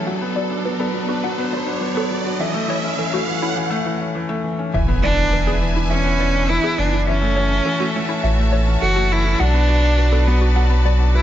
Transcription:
Already playing: felt piano E3 A3 C#4, string section F#3 A4, riser
0.06 felt piano F#3, string section B3 D4, synth arpeggio sound F#5
0.22 felt piano B3
0.36 felt piano F#3, synth arpeggio sound D5
0.50 felt piano D4
0.65 felt piano F#3, synth arpeggio sound B4
0.79 felt piano B3, synth arpeggio sound A4
0.94 felt piano F#3
1.09 felt piano D4, synth arpeggio sound F#4
1.24 felt piano F#3, synth arpeggio sound F#5
1.38 felt piano B3
1.52 felt piano F#3, synth arpeggio sound D5
1.67 felt piano D4
1.81 felt piano F#3, synth arpeggio sound B4
1.95 felt piano B3, synth arpeggio sound A4
2.10 felt piano F#3
2.24 felt piano D4, synth arpeggio sound F#4
2.39 felt piano E3, string section C#4 E4, synth arpeggio sound E5
2.54 felt piano A3
2.68 felt piano E3, synth arpeggio sound C#5
2.83 felt piano C#4
2.98 felt piano E3, synth arpeggio sound A4
3.12 felt piano A3, synth arpeggio sound F#4
3.27 felt piano E3
3.42 felt piano C#4, synth arpeggio sound E4
3.56 felt piano E3
3.70 felt piano A3
3.85 felt piano E3
4.01 felt piano C#4
4.15 felt piano E3
4.29 felt piano A3
4.44 felt piano E3
4.59 felt piano C#4
4.74 sub bass E1, felt piano E3, string section E4 B4 E5 G#5, synth arpeggio sound E5, impact
4.88 felt piano B3
5.02 felt piano E3, cello D4, synth arpeggio sound D5
5.17 felt piano D4
5.32 felt piano E3, synth arpeggio sound B4
5.46 felt piano B3, synth arpeggio sound G#4
5.61 felt piano E3
5.75 felt piano D4, synth arpeggio sound E4
5.89 felt piano E3, cello C#4, synth arpeggio sound E5
6.04 felt piano B3
6.19 felt piano E3, synth arpeggio sound D5
6.34 felt piano D4
6.49 felt piano E3, cello E4, synth arpeggio sound B4
6.64 felt piano B3, synth arpeggio sound G#4
6.78 sub bass F#1, felt piano E3, cello D4
6.93 felt piano D4, synth arpeggio sound E4
7.07 felt piano E3, cello C#4, string section F#4 C#5 E5 A5, synth arpeggio sound E5
7.22 felt piano A3
7.36 felt piano E3, synth arpeggio sound C#5
7.51 felt piano C#4
7.66 felt piano E3, synth arpeggio sound A4
7.80 felt piano A3, synth arpeggio sound F#4
7.95 felt piano E3, cello A3
8.09 felt piano C#4, synth arpeggio sound E4
8.24 sub bass A1, felt piano E3, synth arpeggio sound E5
8.39 felt piano A3
8.53 felt piano E3, synth arpeggio sound C#5
8.68 felt piano C#4
8.82 sub bass F#1, felt piano E3, cello F#4, synth arpeggio sound A4
8.96 felt piano A3, synth arpeggio sound F#4
9.11 felt piano E3, cello E4
9.25 felt piano C#4, synth arpeggio sound E4
9.39 sub bass B1, felt piano F#3, cello D4, string section B4 D5, synth arpeggio sound F#5
9.54 felt piano B3
9.69 felt piano F#3, synth arpeggio sound D5
9.83 felt piano D4
9.98 felt piano F#3, synth arpeggio sound B4
10.12 felt piano B3, synth arpeggio sound A4
10.27 felt piano F#3, cello B3
10.42 felt piano D4, synth arpeggio sound F#4
10.55 felt piano F#3, synth arpeggio sound F#5
10.70 felt piano B3
10.85 felt piano F#3, synth arpeggio sound D5
10.99 felt piano D4
11.14 felt piano F#3, cello E4, synth arpeggio sound B4

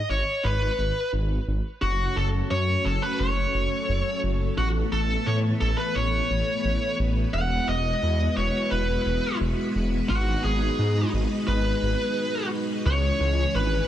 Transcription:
0.10 detuned saw bass G#1, lead electric guitar C#5
0.44 detuned saw bass G#1, lead electric guitar B4
0.78 detuned saw bass G#1
1.13 detuned saw bass G#1
1.48 detuned saw bass G#1
1.82 detuned saw bass F#1, string machine F#3 A3 C#4 A4 C#5, lead electric guitar F#4
2.16 detuned saw bass F#1, lead electric guitar A4
2.51 detuned saw bass F#2, lead electric guitar C#5
2.85 detuned saw bass F#1, lead electric guitar A4
3.02 lead electric guitar B4
3.19 detuned saw bass F#1, lead electric guitar C#5
3.54 detuned saw bass F#1
3.89 detuned saw bass F#1
4.23 detuned saw bass F#1
4.58 detuned saw bass A1, string machine E3 B3 B4, lead electric guitar F#4
4.92 detuned saw bass A1, lead electric guitar A4
5.26 detuned saw bass A2, lead electric guitar C#5
5.61 detuned saw bass A1, lead electric guitar A4
5.78 lead electric guitar B4
5.95 detuned saw bass A1, lead electric guitar C#5
6.30 detuned saw bass A1
6.64 detuned saw bass A1
6.99 detuned saw bass A1
7.33 detuned saw bass E1, string machine G#3 E4 F#4, lead electric guitar F#5
7.68 detuned saw bass E1, lead electric guitar D#5
8.03 detuned saw bass E2
8.37 detuned saw bass E1, lead electric guitar C#5
8.71 detuned saw bass E1, lead electric guitar B4
9.06 detuned saw bass E1
9.40 detuned saw bass E1
9.75 detuned saw bass E1
10.09 detuned saw bass G#1, string machine G#3 D#4, lead electric guitar F#4
10.44 detuned saw bass G#1, lead electric guitar G#4
10.79 detuned saw bass G#2
11.13 detuned saw bass G#1
11.48 detuned saw bass G#1, lead electric guitar B4
11.82 detuned saw bass G#1
12.85 detuned saw bass C#2, string machine E3 G#3 C#4 G#4 C#5, lead electric guitar C#5
13.20 detuned saw bass C#2
13.55 detuned saw bass G#1, lead electric guitar B4

